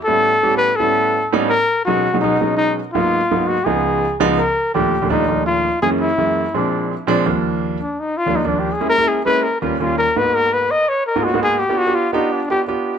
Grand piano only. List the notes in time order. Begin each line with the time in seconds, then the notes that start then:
0.08 A2 G3 B3 C#4 E4
0.43 A2 G3 B3 C#4 G4
0.80 A2 G3 B3 C#4 E4
1.33 A2 G3 B3 C#4 D#4
1.87 B2 F#3 G#3 C#4 D#4
2.13 B2 F#3 G#3 C#4 D#4
2.23 B2 F#3 G#3 C#4 D#4
2.41 B2 F#3 G#3 C#4 D#4
2.95 G#2 F#3 A#3 B3 D#4
3.31 G#2 F#3 A#3 B3 D#4
3.66 C#2 F3 G#3 B3 D#4
4.20 C#2 F3 G#3 B3 D#4
4.75 D#2 A#2 F3 G3 A3 D4
5.02 D#2 A#2 F3 G3 A3 D4
5.10 D#2 A#2 F3 G3 A3 D4
5.28 D#2 A#2 F3 G3 A3 D4
5.82 F#2 E3 G#3 A#3 C#4
6.18 F#2 E3 G#3 A#3 E4
6.54 A#2 F3 G#3 C4 D4
7.07 A#2 F3 G#3 C4 D4
7.26 D#2 F3 G3 A#3 D4
8.26 D#2 F3 G3 A#3 D4
8.45 D#2 F3 G3 A#3 D4
8.80 G#3 A#3 C#4 E4
8.98 G#3 A#3 C#4 E4
9.26 G#3 A#3 C#4 E4
9.62 D#2 G3 A#3 C#4 F4
9.80 D#2 G3 A#3 C#4 F4
10.16 G#2 A#3 B3 D#4 F#4
11.16 G#2 A#3 B3 D#4 F4
11.34 G#2 A#3 B3 D#4 F#4
11.69 B3 D4 F4 G4
11.87 B3 D4 F4 G4
12.13 B3 D4 F4 G4
12.50 B3 D4 F4 G4
12.68 B3 D4 F4 G4